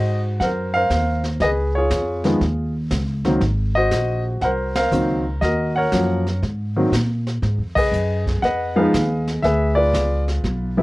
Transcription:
0.00 0.38 G#2 medium
0.00 0.70 F#4 medium
0.00 0.41 C5 medium
0.00 0.20 D#5 loud
0.40 0.89 F#2 medium
0.40 0.75 A#4 medium
0.40 0.75 C5 medium
0.40 0.48 F#5 loud
0.40 brush sweep soft
0.40 kick soft
0.40 snare soft
0.74 1.38 A#4 medium
0.74 1.38 C5 medium
0.74 1.20 F5 loud
0.90 1.39 D#2 medium
0.90 kick soft
0.90 snare medium
0.90 hi-hat pedal medium
1.24 snare soft
1.40 1.89 C#2 medium
1.40 1.76 G#4 medium
1.40 2.38 B4 medium
1.40 1.49 D#5 loud
1.40 brush sweep soft
1.40 kick soft
1.40 snare soft
1.75 2.72 F4 medium
1.75 2.72 G#4 medium
1.75 2.21 C#5 medium
1.90 2.39 F2 medium
1.90 kick soft
1.90 snare medium
1.90 hi-hat pedal medium
2.24 2.39 D#3 medium
2.24 2.39 F3 medium
2.24 2.40 G#3 medium
2.24 2.40 B3 medium
2.24 snare soft
2.41 2.89 D#2 medium
2.41 brush sweep soft
2.41 kick soft
2.41 snare soft
2.90 3.40 C#2 medium
2.90 kick soft
2.90 snare medium
2.90 hi-hat pedal medium
3.25 3.40 D#3 medium
3.25 3.40 F#3 medium
3.25 3.40 A#3 medium
3.25 3.40 C4 medium
3.25 snare soft
3.41 3.90 G#1 medium
3.41 brush sweep medium
3.41 kick soft
3.41 snare soft
3.75 4.73 F#4 medium
3.75 4.43 C5 medium
3.75 4.22 D#5 loud
3.91 4.40 A#1 medium
3.91 kick soft
3.91 snare medium
3.91 hi-hat pedal medium
4.41 4.90 C2 medium
4.41 4.76 A#4 medium
4.41 4.76 C5 medium
4.41 4.50 F#5 medium
4.41 brush sweep soft
4.41 kick soft
4.41 snare soft
4.75 5.39 A#4 medium
4.75 5.39 C5 medium
4.75 5.22 F5 medium
4.75 snare medium
4.75 ride medium
4.92 5.41 C#2 medium
4.92 5.22 D#3 medium
4.92 5.22 F#3 medium
4.92 5.22 A#3 medium
4.92 5.23 C4 medium
4.92 hi-hat pedal medium
5.41 5.91 D#2 medium
5.41 6.39 F#4 medium
5.41 5.76 A#4 medium
5.41 5.73 D#5 medium
5.41 brush sweep soft
5.41 kick soft
5.41 snare soft
5.76 6.40 A#4 medium
5.76 6.39 C#5 medium
5.76 6.23 F#5 medium
5.92 6.41 F#2 medium
5.92 6.23 F3 medium
5.92 6.23 F#3 soft
5.92 6.23 A#3 medium
5.92 6.23 C#4 medium
5.92 kick soft
5.92 snare medium
5.92 hi-hat pedal medium
6.26 snare soft
6.42 6.91 G#2 medium
6.42 brush sweep soft
6.42 kick soft
6.42 snare soft
6.76 6.91 D#3 medium
6.76 6.91 F#3 medium
6.76 6.91 A#3 medium
6.76 6.92 C4 medium
6.92 7.41 A#2 medium
6.92 kick soft
6.92 snare medium
6.92 hi-hat pedal medium
7.27 snare soft
7.42 7.60 G#2 medium
7.42 brush sweep soft
7.42 kick soft
7.42 snare soft
7.58 7.75 F2 medium
7.75 7.91 C#2 medium
7.75 8.74 G#4 medium
7.75 8.43 B4 medium
7.75 8.23 D#5 loud
7.75 kick medium
7.75 crash medium
7.92 8.41 F#2 medium
7.92 hi-hat pedal medium
8.27 kick soft
8.27 snare soft
8.42 8.92 F2 medium
8.42 8.77 B4 medium
8.42 9.41 D#5 medium
8.42 8.74 F#5 loud
8.42 brush sweep soft
8.42 snare soft
8.76 8.91 F3 medium
8.76 8.91 G#3 medium
8.76 8.92 B3 medium
8.76 8.92 D#4 medium
8.76 9.41 G#4 medium
8.76 9.41 B4 medium
8.76 9.23 F5 medium
8.93 9.42 D#2 medium
8.93 kick soft
8.93 snare medium
8.93 hi-hat pedal medium
9.27 snare soft
9.43 9.92 D2 medium
9.43 10.41 G#4 medium
9.43 9.76 B4 medium
9.43 9.78 E5 loud
9.43 brush sweep medium
9.43 kick soft
9.43 snare soft
9.75 10.74 F4 medium
9.75 10.74 B4 medium
9.75 10.23 D5 loud
9.93 10.42 C#2 medium
9.93 kick soft
9.93 snare medium
9.93 hi-hat pedal medium
10.28 snare soft
10.44 10.82 B1 medium
10.44 brush sweep soft
10.44 kick soft
10.44 snare soft
10.78 10.82 F3 medium
10.78 10.82 G#3 medium
10.78 10.82 B3 medium
10.78 10.82 E4 medium

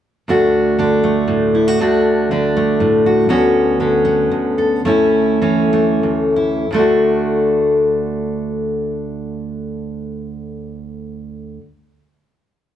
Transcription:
0.28 1.80 D2 medium
0.28 1.03 A3 medium
0.28 0.79 D4 medium
0.28 1.54 F#4 medium
0.79 2.31 D3 medium
0.79 1.81 D4 medium
1.04 1.76 A3 soft
1.28 1.79 A2 medium
1.55 1.68 E4 soft
1.68 1.80 F#4 soft
1.80 3.28 D2 medium
1.80 2.55 A3 medium
1.80 2.31 D4 medium
1.80 3.04 F#4 medium
2.31 3.78 D3 medium
2.31 3.26 D4 medium
2.57 3.26 A3 medium
2.80 3.28 A2 medium
3.06 3.26 F#4 medium
3.29 4.29 D2 medium
3.29 4.04 B3 medium
3.29 3.80 C#4 medium
3.29 4.57 F#4 medium
3.80 4.84 D3 medium
3.80 4.81 C#4 medium
4.05 4.80 B3 medium
4.31 4.84 D2 medium
4.58 4.81 A4 soft
4.85 6.02 D2 medium
4.85 5.71 A3 medium
4.85 5.41 C#4 medium
4.85 6.35 E4 medium
5.42 6.65 E3 medium
5.42 6.65 C#4 medium
5.73 6.65 A3 soft
6.03 6.70 D2 soft
6.36 6.69 E4 soft
6.71 11.57 D2 medium
6.71 11.59 D3 medium
6.71 11.61 A3 medium
6.76 11.63 D4 soft
6.76 11.65 F#4 soft

